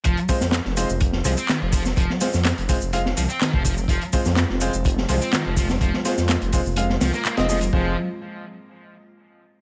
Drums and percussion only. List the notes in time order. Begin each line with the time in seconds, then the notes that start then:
0.04 kick, closed hi-hat, shaker
0.17 closed hi-hat
0.29 kick, closed hi-hat, open hi-hat, shaker
0.41 snare, shaker
0.52 snare, clap, closed hi-hat, shaker
0.65 snare
0.77 closed hi-hat, open hi-hat, shaker
0.89 shaker
1.01 kick, closed hi-hat, shaker
1.13 snare
1.25 closed hi-hat, open hi-hat, shaker
1.37 shaker
1.49 snare, clap, closed hi-hat, shaker
1.73 kick, closed hi-hat, open hi-hat, shaker
1.85 snare, shaker
1.97 kick, closed hi-hat, shaker
2.10 snare
2.21 snare, closed hi-hat, open hi-hat, shaker
2.34 snare, shaker
2.45 snare, clap, closed hi-hat, shaker
2.58 closed hi-hat
2.69 kick, closed hi-hat, open hi-hat, shaker
2.81 shaker
2.93 closed hi-hat, shaker
3.06 snare
3.17 closed hi-hat, open hi-hat, shaker
3.30 shaker
3.41 snare, clap, closed hi-hat, shaker
3.53 kick
3.65 kick, closed hi-hat, open hi-hat, shaker
3.78 shaker
3.88 kick, closed hi-hat, shaker
4.01 closed hi-hat
4.13 kick, closed hi-hat, open hi-hat, shaker
4.25 snare, shaker
4.36 snare, clap, closed hi-hat, shaker
4.50 snare
4.61 closed hi-hat, open hi-hat, shaker
4.73 shaker
4.85 kick, closed hi-hat, shaker
4.98 snare
5.09 closed hi-hat, open hi-hat, shaker
5.22 shaker
5.33 snare, clap, closed hi-hat, shaker
5.57 kick, closed hi-hat, open hi-hat, shaker
5.69 snare, shaker
5.81 kick, closed hi-hat, shaker
5.94 snare
6.05 snare, closed hi-hat, open hi-hat, shaker
6.17 snare, shaker
6.28 snare, clap, closed hi-hat, shaker
6.42 closed hi-hat
6.52 kick, closed hi-hat, open hi-hat, shaker
6.66 shaker
6.76 closed hi-hat, shaker
6.90 snare
7.01 snare, closed hi-hat, open hi-hat, shaker
7.13 snare, shaker
7.25 clap, closed hi-hat, shaker
7.37 snare, closed hi-hat
7.49 snare, open hi-hat, shaker
7.61 closed hi-hat, shaker
7.73 kick